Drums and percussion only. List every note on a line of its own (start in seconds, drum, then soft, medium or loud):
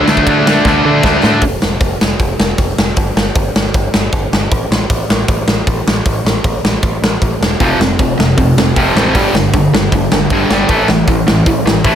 0.08 snare loud
0.17 kick medium
0.27 kick loud
0.27 ride medium
0.47 snare loud
0.65 kick loud
0.65 snare medium
1.03 kick loud
1.03 snare medium
1.23 snare medium
1.41 kick loud
1.41 open hi-hat medium
1.62 snare medium
1.80 kick loud
1.80 open hi-hat medium
2.01 snare loud
2.19 kick loud
2.19 open hi-hat medium
2.40 snare loud
2.58 kick loud
2.58 open hi-hat medium
2.78 snare loud
2.96 kick loud
2.96 open hi-hat medium
3.17 snare loud
3.35 kick loud
3.35 open hi-hat medium
3.56 snare loud
3.74 kick loud
3.74 open hi-hat medium
3.94 snare loud
4.12 kick loud
4.12 open hi-hat medium
4.33 snare loud
4.52 kick loud
4.52 open hi-hat medium
4.72 snare medium
4.90 kick loud
4.90 open hi-hat medium
5.10 snare loud
5.28 kick loud
5.28 open hi-hat medium
5.48 snare loud
5.67 kick loud
5.67 open hi-hat medium
5.88 snare loud
6.06 kick loud
6.06 open hi-hat medium
6.26 snare medium
6.44 kick loud
6.44 open hi-hat medium
6.65 snare loud
6.83 kick loud
6.83 open hi-hat medium
7.04 snare loud
7.22 kick loud
7.22 open hi-hat soft
7.43 snare loud
7.60 kick loud
7.60 open hi-hat medium
7.81 snare loud
7.99 kick loud
7.99 open hi-hat medium
8.20 snare loud
8.38 kick loud
8.38 open hi-hat medium
8.58 snare loud
8.76 kick loud
8.76 open hi-hat medium
8.97 snare loud
9.15 kick loud
9.15 open hi-hat medium
9.35 snare loud
9.54 kick loud
9.54 open hi-hat medium
9.75 snare loud
9.92 kick loud
9.92 open hi-hat medium
10.12 snare loud
10.30 kick loud
10.30 open hi-hat medium
10.51 snare loud
10.68 kick loud
10.68 open hi-hat medium
10.88 snare medium
11.07 kick loud
11.07 open hi-hat medium
11.28 snare loud
11.46 kick loud
11.46 open hi-hat medium
11.67 snare loud
11.84 kick loud
11.84 open hi-hat medium